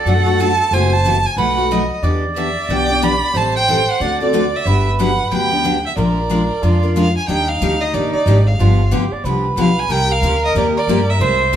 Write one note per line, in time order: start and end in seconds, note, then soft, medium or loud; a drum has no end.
0.00 0.72 A4 loud
0.00 0.10 D5 medium
0.05 0.58 F#2 medium
0.05 0.25 B2 medium
0.05 0.26 F#3 medium
0.05 0.26 A3 medium
0.05 0.26 D4 medium
0.05 0.25 F#4 medium
0.05 0.42 F#5 medium
0.26 0.39 A3 soft
0.26 0.39 D4 soft
0.26 0.39 F#4 medium
0.40 0.50 B2 medium
0.40 0.50 F#3 medium
0.40 0.51 A3 medium
0.40 0.51 D4 medium
0.40 0.51 F#4 medium
0.40 0.75 A5 loud
0.71 1.24 F#1 medium
0.71 0.93 C3 medium
0.71 0.93 E3 medium
0.71 0.93 A3 medium
0.71 0.93 E4 medium
0.71 0.93 F#4 medium
0.71 1.09 C5 medium
0.71 0.94 G#5 medium
0.93 1.27 A5 loud
1.05 1.16 C3 medium
1.05 1.16 E3 medium
1.05 1.16 A3 medium
1.05 1.16 E4 medium
1.05 1.16 F#4 medium
1.26 1.38 G#5 medium
1.37 1.90 B1 medium
1.37 1.57 B2 medium
1.37 1.57 F#3 medium
1.37 1.57 A3 medium
1.37 1.57 D#4 medium
1.37 1.56 F#4 medium
1.37 1.87 B4 loud
1.37 1.74 F#5 medium
1.57 1.70 A3 soft
1.57 1.70 D#4 soft
1.57 1.70 F#4 medium
1.71 1.82 B2 medium
1.71 1.82 F#3 medium
1.71 1.82 A3 medium
1.71 1.82 D#4 medium
1.71 1.82 F#4 medium
1.71 1.98 D#5 medium
2.02 2.55 E2 medium
2.02 2.24 E3 medium
2.02 2.24 B3 medium
2.02 2.24 D4 medium
2.02 2.24 G4 medium
2.02 3.36 D5 loud
2.36 2.47 E3 medium
2.36 2.47 B3 medium
2.36 2.48 D4 medium
2.36 2.48 G4 medium
2.36 2.73 E5 medium
2.69 3.21 B1 medium
2.69 2.88 E3 medium
2.69 2.89 B3 medium
2.69 2.89 D4 medium
2.69 2.88 G4 medium
2.69 3.05 G5 loud
2.89 3.01 B3 soft
2.89 3.01 D4 soft
2.89 3.01 G4 medium
3.02 3.13 E3 medium
3.02 3.13 B3 medium
3.02 3.13 D4 loud
3.02 3.13 G4 medium
3.02 3.39 B5 loud
3.34 3.87 A1 medium
3.34 3.55 E3 medium
3.34 3.55 G3 medium
3.34 3.55 C4 medium
3.34 3.55 E4 medium
3.34 3.55 A4 medium
3.34 4.03 C5 medium
3.34 3.55 A5 medium
3.56 3.92 G5 loud
3.68 3.79 E3 medium
3.68 3.79 G3 medium
3.68 3.79 C4 medium
3.68 3.79 E4 medium
3.68 3.79 A4 medium
3.90 4.21 F#5 medium
4.00 4.53 D2 medium
4.00 4.20 D3 medium
4.00 4.20 A3 medium
4.00 4.20 C4 medium
4.00 4.20 F#4 medium
4.00 4.19 A4 medium
4.00 4.68 D5 loud
4.20 4.32 C4 soft
4.20 4.33 F#4 medium
4.20 4.33 A4 medium
4.20 4.57 D5 medium
4.33 4.44 D3 medium
4.33 4.44 A3 medium
4.33 4.44 C4 medium
4.33 4.45 F#4 medium
4.33 4.45 A4 medium
4.56 4.87 E5 medium
4.65 5.18 G1 medium
4.65 4.87 D3 medium
4.65 4.87 F#3 medium
4.65 4.87 B3 medium
4.65 4.87 D4 medium
4.65 4.87 G4 medium
4.65 5.72 B4 medium
4.99 5.10 D3 medium
4.99 5.10 F#3 medium
4.99 5.10 B3 medium
4.99 5.10 D4 medium
4.99 5.11 G4 loud
4.99 5.31 F#5 medium
5.31 5.84 D2 medium
5.31 5.51 D3 medium
5.31 5.51 F#3 medium
5.31 5.51 B3 medium
5.31 5.51 D4 medium
5.31 5.50 G4 medium
5.31 5.82 G5 medium
5.51 5.64 B3 soft
5.51 5.64 D4 medium
5.51 5.64 G4 medium
5.64 5.75 D3 medium
5.64 5.75 F#3 medium
5.64 5.76 B3 medium
5.64 5.76 D4 loud
5.64 5.76 G4 loud
5.86 5.98 E5 medium
5.97 6.49 A#1 medium
5.97 6.18 F3 medium
5.97 6.18 G#3 medium
5.97 6.18 D4 medium
5.97 6.18 F4 medium
5.97 6.64 A#4 medium
5.97 6.18 A#4 medium
5.97 6.93 D5 medium
6.30 6.41 F3 medium
6.30 6.41 G#3 medium
6.30 6.41 D4 medium
6.30 6.41 F4 medium
6.30 6.41 A#4 medium
6.62 7.15 F2 medium
6.62 6.82 F3 medium
6.62 6.82 G#3 medium
6.62 6.82 D4 medium
6.62 7.15 F4 medium
6.62 6.82 F4 medium
6.62 6.82 A#4 medium
6.83 6.96 D4 soft
6.83 6.96 F4 medium
6.83 6.95 A#4 medium
6.96 7.07 F3 medium
6.96 7.07 G#3 medium
6.96 7.07 D4 medium
6.96 7.07 F4 medium
6.96 7.07 A#4 medium
6.96 7.15 F5 loud
7.17 7.29 G#5 medium
7.27 7.60 D#2 medium
7.27 7.49 D#3 medium
7.27 7.49 G3 medium
7.27 7.49 A#3 medium
7.27 7.49 D4 medium
7.27 8.55 D#4 medium
7.27 7.49 G4 medium
7.27 7.50 G5 medium
7.48 7.83 F5 medium
7.61 7.93 D2 medium
7.61 7.72 D#3 medium
7.61 7.72 G3 medium
7.61 7.72 A#3 medium
7.61 7.73 D4 medium
7.61 7.73 G4 medium
7.81 7.95 D#5 medium
7.94 8.12 A#1 medium
7.94 8.14 D#3 medium
7.94 8.14 G3 medium
7.94 8.14 A#3 medium
7.94 8.14 D4 medium
7.94 8.15 G4 medium
7.94 8.12 D5 medium
8.13 8.48 D5 medium
8.13 muted upright bass stroke soft
8.26 8.58 G#1 loud
8.26 8.38 D#3 medium
8.26 8.38 G3 medium
8.26 8.38 A#3 medium
8.26 8.38 D4 medium
8.26 8.38 G4 medium
8.47 8.92 F5 medium
8.59 8.91 G1 medium
8.59 8.80 D3 medium
8.59 8.80 F3 medium
8.59 8.80 B3 medium
8.59 8.80 D4 medium
8.59 8.94 F4 medium
8.59 8.80 G4 medium
8.91 9.10 D2 medium
8.91 9.03 D3 loud
8.91 9.03 F3 medium
8.91 9.03 B3 medium
8.91 9.03 D4 medium
8.91 9.14 G4 medium
8.91 9.03 G4 loud
9.11 9.26 D5 medium
9.11 muted upright bass stroke soft
9.24 9.55 C2 medium
9.24 9.45 D3 medium
9.24 9.45 F3 medium
9.24 9.45 B3 medium
9.24 9.45 D4 medium
9.24 9.46 G4 medium
9.24 9.91 B4 loud
9.56 9.88 B1 medium
9.56 9.68 D3 medium
9.56 9.68 F3 loud
9.56 9.68 B3 medium
9.56 9.69 D4 loud
9.56 9.69 G4 medium
9.60 9.81 F5 medium
9.80 9.93 G#5 medium
9.89 10.21 C2 medium
9.89 10.10 C3 medium
9.89 10.10 G3 medium
9.89 10.10 A#3 medium
9.89 10.10 D#4 medium
9.89 10.10 G4 medium
9.89 11.20 A#4 loud
9.89 10.13 G5 loud
10.11 10.43 F5 loud
10.22 10.54 D2 medium
10.22 10.34 C3 medium
10.22 10.34 G3 medium
10.22 10.34 A#3 medium
10.22 10.34 D#4 medium
10.22 10.34 G4 loud
10.45 10.56 D#5 medium
10.55 10.86 D#2 medium
10.55 10.75 C3 medium
10.55 10.75 G3 medium
10.55 10.76 A#3 medium
10.55 10.76 D#4 medium
10.55 10.76 G4 medium
10.55 10.66 D5 medium
10.78 11.12 D5 medium
10.87 11.19 G2 medium
10.87 10.99 C3 medium
10.87 10.99 G3 medium
10.87 10.99 A#3 medium
10.87 10.99 D#4 loud
10.87 11.00 G4 loud
11.10 11.54 E5 medium
11.20 11.52 C2 medium
11.20 11.41 C3 medium
11.20 11.41 G#3 medium
11.20 11.41 A#3 medium
11.20 11.41 E4 medium
11.20 11.41 A#4 medium
11.20 11.56 C5 loud
11.53 11.56 C3 medium
11.53 11.56 G#3 medium